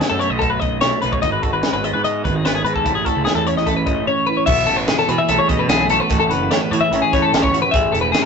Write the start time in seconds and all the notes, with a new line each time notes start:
Already playing: B2 A3 D#4 A4
0.01 F#3, snare, closed hi-hat
0.10 F#2 A4
0.19 A3 C#5, closed hi-hat
0.30 B1 D#5
0.39 D#4 A4, kick, closed hi-hat
0.50 B4
0.60 B1 F#2 D#5, kick, closed hi-hat
0.81 B1 A3 C#5, snare, closed hi-hat
1.02 B1 D#4 B4, closed hi-hat
1.12 C#5, kick
1.22 G#1 G#2 D#4 D#5, kick, closed hi-hat
1.32 B4
1.43 F#4 A4, kick, closed hi-hat
1.53 G#1 B4
1.63 G#3, snare, closed hi-hat
1.73 G#1 B4
1.84 B3 D#5, closed hi-hat
1.93 G#2 B4
2.04 D#4 D#5, closed hi-hat
2.24 G#1 D#3 B4, kick, closed hi-hat
2.35 G#4
2.45 G#1 B3 B4, snare, closed hi-hat
2.55 G#4
2.64 G#2 D#4 B4, closed hi-hat
2.75 A4, kick
2.84 A1 A2 E4, kick, closed hi-hat
2.95 G#4
3.05 F#4 A4, kick, closed hi-hat
3.15 C#2 G#4
3.25 E3 G#4, snare, closed hi-hat
3.35 E2 A4
3.47 C#4 C#5, closed hi-hat
3.56 A1 D#5, snare
3.66 E4 A4, kick, closed hi-hat
3.76 B4
3.86 A1 A2 D#5, kick, closed hi-hat
4.07 C#4 C#5
4.27 E4 B4
4.37 C#5
4.46 B1 B2 F#4 E5, kick, crash
4.66 A1 E4 A4, closed hi-hat
4.77 B4
4.88 G#4, snare, closed hi-hat
4.99 A4, snare
5.08 B2 E3 G#4 B4, closed hi-hat
5.18 E5
5.28 B1 A3 A4, closed hi-hat
5.38 C#5
5.48 F#2 B2 C#4 D#5, kick, closed hi-hat
5.59 E4 B4
5.69 B1 A3 G#4, snare, closed hi-hat
5.89 B1 F#4 A4, closed hi-hat
6.00 B4
6.10 A1 A2 F#4 A4, kick, closed hi-hat
6.20 A4
6.30 F#1 C#4 B4, closed hi-hat
6.43 E4
6.51 C#5, snare, closed hi-hat
6.61 B4
6.71 A2 E3 F#4 C#5, closed hi-hat
6.81 G#4 E5
6.91 A1 C#4, closed hi-hat
7.02 G#4
7.13 A2 E4 C#5, kick, snare, closed hi-hat
7.22 A4
7.33 A1 C#4, snare, closed hi-hat
7.42 C#5, kick
7.52 A1 F#4, closed hi-hat
7.62 B4
7.71 A1 A2 G#4 E5, kick, closed hi-hat
7.92 E1 E4 A4, closed hi-hat
8.01 B4
8.12 G#4, snare, closed hi-hat